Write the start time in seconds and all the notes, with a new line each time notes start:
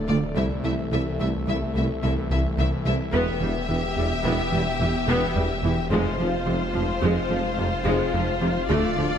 Already playing: D1 F3 A3 A4 D5
0.08 D2 D3 A3 F4 D5
0.35 C2 E3 A3 E4 E5
0.64 C2 C3 A3 E4 E5
0.91 C2 C3 A3 E4 E5
1.19 C2 A3 E4 E5
1.47 C2 A3 E4 E5
1.75 C2 C3 A3 E4 E5
2.03 C2 A3 E4 E5
2.30 C2 A3 E4 E5
2.58 C2 A3 E4 E5
2.85 C2 C3 A3 E4 E5
3.13 E1 E2 B3 G4 E5
3.41 E1 E2 E3 G3
3.69 E1 E2 E3
3.97 E1 E2 G3
4.25 E1 E2 B3
4.52 E1 E2 E3 G3
4.80 E1 E2 E3
5.08 E1 E2 B3
5.36 E1 E2 G3
5.63 E1 E2 E3
5.91 F1 F2 G#3 C4 F4 C5 F5
6.19 F1 F2 F3
6.46 F1 F2 C3 F3
6.74 F1 F2 F3
7.02 F1 F2 G#3
7.30 F1 F2 F3
7.58 F1 F2 C3
7.86 F1 F2 G#3
8.14 F1 F2 F3
8.41 F1 F2 C3 F3
8.69 D1 D2 A3 D4 D5
8.97 D2 D3 F3